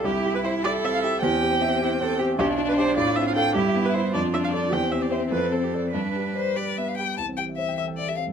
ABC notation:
X:1
M:6/8
L:1/16
Q:3/8=102
K:C
V:1 name="Violin"
E12 | C12 | D6 F6 | E6 D6 |
C12 | D4 c2 d2 e f g2 | a2 g2 e2 e2 d e f2 |]
V:2 name="Viola"
G3 B c2 d2 e f e2 | g8- g2 z2 | G3 B c2 d2 e f g2 | G3 B c2 d2 e f d2 |
g2 e d c2 B2 A G A2 | B8- B2 z2 | z6 A6 |]
V:3 name="Cello"
E6 A6 | G6 E2 A2 G2 | D12 | E6 F6 |
G6 A6 | B8- B z3 | E,12 |]
V:4 name="Grand piano"
C,,2 G2 e2 G2 C2 G2 | E,,2 G2 e2 G2 C2 G2 | B,,,2 D2 [Gd]2 A,,2 C2 [Af]2 | G,,2 B,2 [Be]2 F,,2 D2 [Ad]2 |
E,,2 C2 [ce]2 F,,2 C2 [Ad]2 | G,,2 G2 d2 G2 B,2 G2 | C,, C G e c g e' g e G C G,, |]